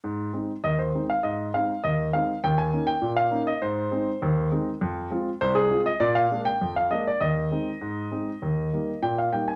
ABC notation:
X:1
M:2/4
L:1/16
Q:1/4=100
K:Ab
V:1 name="Grand piano"
z4 e c2 f | e2 f2 e2 f2 | g a2 g2 f2 e | c6 z2 |
z4 c A2 e | =d f2 g2 f e d | e8- | e4 g f g a |]
V:2 name="Grand piano"
A,,2 [A,CE]2 E,,2 [A,CE]2 | A,,2 [A,CE]2 E,,2 [A,CE]2 | E,,2 [B,DE]2 B,,2 [B,DE]2 | A,,2 [A,CE]2 E,,2 [A,CE]2 |
F,,2 [A,CF]2 C,,2 [A,CF]2 | B,,2 [A,B,=D]2 F,,2 [A,B,D]2 | E,,2 [A,CE]2 A,,2 [A,CE]2 | E,,2 [G,B,E]2 B,,2 [G,B,E]2 |]